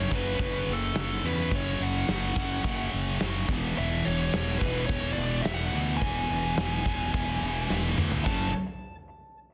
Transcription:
Already playing: distorted electric guitar F#2 C#3 F#3, lead electric guitar C#5
0.10 fingered electric bass F#1, distorted electric guitar F#2 C#3 F#3, kick, open hi-hat
0.15 lead electric guitar B4
0.38 fingered electric bass F#1, distorted electric guitar F#2 C#3 F#3, kick, open hi-hat
0.67 fingered electric bass F#1, open hi-hat
0.73 lead electric guitar A4
0.95 fingered electric bass F#1, distorted electric guitar F#2 C#3 F#3, snare, open hi-hat
1.00 lead electric guitar A4
1.23 fingered electric bass E2, distorted electric guitar F#2 C#3 F#3, lead electric guitar B4, open hi-hat
1.38 snare
1.50 fingered electric bass F#1, distorted electric guitar F#2 C#3 F#3, kick, open hi-hat
1.55 lead electric guitar C#5
1.80 fingered electric bass F#1, lead electric guitar F#5, open hi-hat
2.08 fingered electric bass F#1, distorted electric guitar F#2 C#3 F#3, snare, open hi-hat
2.36 fingered electric bass F#1, distorted electric guitar F#2 C#3 F#3, kick, open hi-hat
2.63 fingered electric bass F#1, distorted electric guitar F#2 C#3 F#3, kick, open hi-hat
2.93 fingered electric bass F#1, open hi-hat
3.20 fingered electric bass F#1, distorted electric guitar F#2 C#3 F#3, snare, open hi-hat
3.47 fingered electric bass E1, distorted electric guitar E2 B2 E3, kick, open hi-hat
3.76 fingered electric bass E1, distorted electric guitar E2 B2 E3, lead electric guitar E5, open hi-hat
4.05 fingered electric bass E1, lead electric guitar C#5, open hi-hat
4.32 fingered electric bass E1, distorted electric guitar E2 B2 E3, snare, open hi-hat
4.59 fingered electric bass E1, distorted electric guitar E2 B2 E3, lead electric guitar B4, kick, open hi-hat
4.86 fingered electric bass E1, distorted electric guitar E2 B2, lead electric guitar C#5, kick, open hi-hat
4.91 distorted electric guitar E3
5.13 lead electric guitar D5, open hi-hat
5.17 fingered electric bass E1
5.41 lead electric guitar E5, open hi-hat
5.45 fingered electric bass E1, distorted electric guitar E2 B2 E3, snare
5.54 lead electric guitar F#5
5.73 fingered electric bass D2, distorted electric guitar E2 B2 E3, open hi-hat
5.97 distorted electric guitar E2, lead electric guitar G#5
6.01 fingered electric bass E1, distorted electric guitar B2 E3, kick, open hi-hat
6.30 fingered electric bass E1, open hi-hat
6.57 fingered electric bass E1, distorted electric guitar E2 B2 E3, snare, open hi-hat
6.85 fingered electric bass E1, distorted electric guitar E2 B2 E3, kick, open hi-hat
7.00 snare
7.13 fingered electric bass E1, distorted electric guitar E2 B2 E3, kick, open hi-hat
7.42 fingered electric bass E1, open hi-hat
7.69 fingered electric bass E1, distorted electric guitar E2 B2 E3, snare
7.96 fingered electric bass D2, distorted electric guitar E2 B2 E3, mid tom
8.11 floor tom
8.25 fingered electric bass F#1, distorted electric guitar F#2 C#3 F#3, lead electric guitar A5, kick, crash

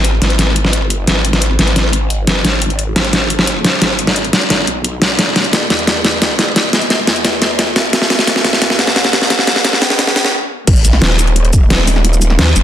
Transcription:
Already playing: wobble bass G#1
0.04 closed hi-hat
0.22 wobble bass G#1, snare, closed hi-hat
0.30 closed hi-hat
0.39 snare, closed hi-hat
0.56 closed hi-hat
0.65 snare
0.73 closed hi-hat
0.82 wobble bass G1
0.90 closed hi-hat
1.07 wobble bass G#1, snare, closed hi-hat
1.25 closed hi-hat
1.33 snare, closed hi-hat
1.42 closed hi-hat
1.59 wobble bass G#1, snare, closed hi-hat
1.67 closed hi-hat
1.76 snare, closed hi-hat
1.93 closed hi-hat
2.10 closed hi-hat
2.19 wobble bass G1
2.27 snare, closed hi-hat
2.45 wobble bass G#1, snare, closed hi-hat
2.62 closed hi-hat
2.70 closed hi-hat
2.79 closed hi-hat
2.96 wobble bass G#1, snare, closed hi-hat
3.04 closed hi-hat
3.13 snare, closed hi-hat
3.30 closed hi-hat
3.39 snare
3.47 closed hi-hat
3.65 snare, closed hi-hat
3.82 wobble bass G#1, snare, closed hi-hat
3.99 closed hi-hat
4.07 snare, closed hi-hat
4.16 closed hi-hat
4.25 closed hi-hat
4.33 snare, closed hi-hat
4.42 closed hi-hat
4.50 wobble bass G#1, snare, closed hi-hat
4.67 wobble bass B1, closed hi-hat
4.84 closed hi-hat
5.02 snare, closed hi-hat
5.19 wobble bass E1, snare, closed hi-hat
5.36 snare, closed hi-hat
5.45 closed hi-hat
5.53 snare, closed hi-hat
5.70 wobble bass E2, snare, closed hi-hat
5.79 closed hi-hat
5.87 snare, closed hi-hat
6.05 snare, closed hi-hat
6.22 snare, closed hi-hat
6.39 snare, closed hi-hat
6.56 wobble bass E1, snare, closed hi-hat
6.73 snare, closed hi-hat
6.82 closed hi-hat
6.90 snare, closed hi-hat
7.07 wobble bass E2, snare, closed hi-hat
7.16 closed hi-hat
7.25 snare, closed hi-hat
7.42 snare, closed hi-hat
7.59 snare, closed hi-hat
7.76 snare, closed hi-hat
7.93 wobble bass E1, snare, closed hi-hat
8.02 snare
8.10 snare, closed hi-hat
8.19 snare, closed hi-hat
8.27 snare, closed hi-hat
8.36 snare
8.44 wobble bass E2, snare, closed hi-hat
8.53 snare, closed hi-hat
8.62 snare, closed hi-hat
8.70 snare
8.79 snare, closed hi-hat
8.87 snare
8.96 snare, closed hi-hat
9.04 wobble bass D#2, snare
9.13 snare, closed hi-hat
9.22 snare
9.30 wobble bass E1, snare, closed hi-hat
9.39 snare
9.47 snare, closed hi-hat
9.56 snare, closed hi-hat
9.65 snare, closed hi-hat
9.73 snare
9.82 wobble bass B1, snare, closed hi-hat
9.90 snare, closed hi-hat
9.99 snare, closed hi-hat
10.07 snare
10.16 snare, closed hi-hat
10.25 snare
10.67 wobble bass G#1, kick, closed hi-hat, crash
10.76 shaker
10.85 wobble bass B1, closed hi-hat, shaker
10.93 snare
11.02 wobble bass D#1, snare, closed hi-hat
11.19 closed hi-hat, shaker
11.27 closed hi-hat
11.36 closed hi-hat
11.45 closed hi-hat
11.53 kick, closed hi-hat, shaker
11.70 snare, closed hi-hat
11.88 snare, open hi-hat, shaker
11.96 snare
12.05 closed hi-hat
12.13 shaker
12.22 closed hi-hat, shaker
12.30 snare
12.39 wobble bass D#2, snare, closed hi-hat
12.56 wobble bass F#1, closed hi-hat, shaker

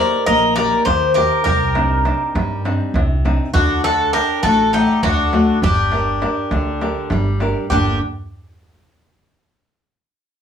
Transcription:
Already playing: nylon-string guitar A#3 D#4, bouzouki A#4 D5
0.00 nylon-string guitar G4 A#4
0.26 upright bass A#1, nylon-string guitar A#3, bouzouki A#4 D#5, darbuka tek
0.56 nylon-string guitar D#4 G4 A#4, bouzouki A#4 D5, darbuka tek
0.72 darbuka tek
0.85 upright bass D#2, nylon-string guitar D#3, bouzouki G4 C5, darbuka tek, darbuka dum
1.14 nylon-string guitar D#4 G4 A#4, bouzouki G4 A#4, darbuka tek
1.44 upright bass C2, nylon-string guitar C3, bouzouki G4 A#4, darbuka dum
1.60 darbuka tek
1.75 nylon-string guitar C4 D4 D#4, darbuka tek
2.05 nylon-string guitar C4 D4 D#4, darbuka tek
2.35 upright bass G2, nylon-string guitar G3, darbuka tek
2.65 nylon-string guitar C4 D4 D#4, darbuka tek
2.81 darbuka tek
2.94 upright bass C2, nylon-string guitar C3, darbuka tek, darbuka dum
3.25 nylon-string guitar C4 D4 D#4, darbuka tek
3.54 upright bass D2, nylon-string guitar D3, bouzouki D4 F#4, darbuka dum
3.69 darbuka tek
3.84 nylon-string guitar D4 F#5, bouzouki F#4 A4, darbuka tek
4.13 nylon-string guitar D4, bouzouki G4 A#4, darbuka tek
4.43 upright bass A1, nylon-string guitar A3, bouzouki F#4 A4, darbuka tek
4.73 nylon-string guitar A3 D5 F#5, bouzouki D#4 G4, darbuka tek
4.90 darbuka tek
5.03 upright bass D2, nylon-string guitar D3, bouzouki D4 F#4, darbuka tek, darbuka dum
5.33 nylon-string guitar A3 D4 F#4, darbuka tek
5.62 upright bass G1, nylon-string guitar G3, bouzouki D4 G4, darbuka dum
5.78 darbuka tek
5.92 nylon-string guitar D4 G4 A#4, darbuka tek
6.07 darbuka tek
6.22 nylon-string guitar D4 G4 A#4, darbuka tek
6.51 upright bass D2, nylon-string guitar D3, darbuka tek
6.67 darbuka tek
6.81 nylon-string guitar D4 G4 A#4, darbuka tek
6.95 darbuka tek
7.10 upright bass G1, nylon-string guitar G3, darbuka tek
7.40 nylon-string guitar D4 G4 A#4, darbuka tek
7.56 darbuka tek
7.70 upright bass G1, nylon-string guitar G2 D3 G3 A#3 D4, bouzouki D4 G4, darbuka dum

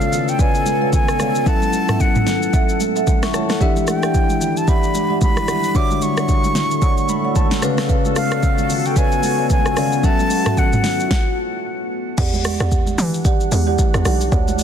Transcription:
Already playing: tine electric piano C#3 C#4 F4 B4 D5, ambient pad B3 F4 A4, flute F5
0.01 high conga, shaker
0.12 low conga, shaker
0.28 flute G5, shaker
0.39 marimba B4 C#5 D5 F5, flute G#5, kick, shaker
0.55 shaker
0.66 high conga, shaker
0.81 marimba B4 C#5 D5 F5, high conga
0.93 flute G#5, kick, high conga, low conga, shaker
1.08 cross-stick, shaker
1.19 marimba B4 C#5 D5 F5, cross-stick, high conga, low conga, shaker
1.35 shaker
1.46 tine electric piano F#3 C#4 E4 A4 F#5, ambient pad A3 E4, marimba A4 E5 F#5, flute A5, kick, shaker
1.62 high conga, shaker
1.73 high conga, shaker
1.88 marimba A4 E5 F#5, cross-stick, mid tom, shaker
2.00 flute F#5, kick, shaker
2.15 mid tom, high conga, shaker
2.26 snare, low conga, shaker
2.42 shaker
2.53 marimba A4 E5 F#5, kick, shaker
2.69 shaker
2.80 high conga, shaker
2.96 marimba A4 E5 F#5, shaker
3.07 kick, high conga, low conga, shaker
3.23 tine electric piano E5 C#6, cross-stick, snare, shaker
3.34 marimba A4 E5 F#5, tine electric piano C#5 A5, cross-stick, high conga, low conga, shaker
3.49 tine electric piano A4 F#5, cross-stick, snare, shaker
3.60 tine electric piano E3 D4 E4 G4 E5, ambient pad G3 D5, marimba G4 D5 E5 F#5, kick, shaker
3.76 high conga, shaker
3.87 flute G5, cross-stick, high conga, shaker
4.03 marimba G4 D5 E5 F#5, cross-stick, shaker
4.14 kick, shaker
4.29 high conga, shaker
4.41 low conga, shaker
4.57 flute A5, shaker
4.68 marimba G4 D5 E5 F#5, flute B5, kick, shaker
4.83 shaker
4.94 high conga, shaker
5.10 marimba G4 D5 E5 F#5, high conga
5.21 flute B5, kick, high conga, low conga, shaker
5.37 cross-stick, shaker
5.48 marimba G4 D5 E5 F#5, cross-stick, high conga, low conga, shaker
5.64 shaker
5.74 tine electric piano D3 D4 F#4 C#5 E5, ambient pad A3 F#4 A4, marimba C#5 D5 F#5, flute D6, kick, shaker
5.91 high conga, shaker
6.01 flute C#6, high conga, shaker
6.17 marimba C#5 D5 F#5, cross-stick, shaker
6.29 kick, shaker
6.44 high conga, shaker
6.55 snare, low conga, shaker
6.71 shaker
6.82 marimba C#5 D5 F#5, kick, shaker
6.97 shaker
7.09 tine electric piano B5, high conga, shaker
7.24 marimba C#5 D5 F#5, high conga
7.36 tine electric piano A5, kick, high conga, low conga, shaker
7.51 snare, shaker
7.62 tine electric piano C#3 C#4 B4 D5 F5, ambient pad B3 F4, marimba B4 C#5 D5 F5, cross-stick, high conga, low conga, shaker
7.78 cross-stick, snare, shaker
7.89 marimba B4 C#5 D5 F5, kick, shaker
8.05 high conga, shaker
8.16 flute F5, cross-stick, open hi-hat, high conga, shaker
8.31 marimba B4 C#5 D5 F5, cross-stick, shaker
8.43 kick, shaker
8.58 high conga, shaker
8.69 open hi-hat, low conga, shaker
8.85 flute G5, shaker
8.96 marimba B4 C#5 D5 F5, flute G#5, kick, shaker
9.12 shaker
9.23 open hi-hat, high conga, shaker
9.39 marimba B4 C#5 D5 F5, high conga
9.50 flute G#5, kick, high conga, low conga, shaker
9.66 cross-stick, shaker
9.76 tine electric piano C#3 C#4 B4 D5 F5, marimba B4 C#5 D5 F5, cross-stick, open hi-hat, high conga, low conga, shaker
9.92 shaker
10.03 tine electric piano F#3 C#4 A4 E5 F#5, marimba A4 E5 F#5, flute A5, kick, shaker
10.19 high conga, shaker
10.30 open hi-hat, high conga, shaker
10.46 marimba A4 E5 F#5, cross-stick, mid tom, shaker
10.57 flute F#5, kick, low conga, shaker
10.72 mid tom, high conga, shaker
10.84 snare, open hi-hat, low conga, shaker
11.00 shaker
11.11 kick, snare
12.18 log drum bass E2, ambient pad E3 G3 D4 F#5, marimba G4 D5 F#5, kick, crash, shaker
12.33 high conga, shaker
12.44 cross-stick, open hi-hat, high conga, shaker
12.60 log drum bass E2, marimba G4 D5 F#5, cross-stick, shaker
12.71 kick, shaker
12.86 high conga, shaker
12.98 log drum bass E3, open hi-hat, low conga, shaker
13.14 shaker
13.25 marimba G4 D5 F#5, kick, shaker
13.40 shaker
13.51 log drum bass E2, open hi-hat, high conga, shaker
13.67 marimba G4 D5 F#5, high conga
13.78 kick, high conga, low conga, shaker
13.94 log drum bass E2, cross-stick, shaker
14.05 log drum bass B1, marimba G4 D5 F#5, cross-stick, open hi-hat, high conga, low conga, shaker
14.21 shaker
14.32 log drum bass D2, ambient pad F#3 A3 F#4, marimba C#5 D5 F#5, kick, shaker
14.48 high conga, shaker
14.59 open hi-hat, high conga, shaker

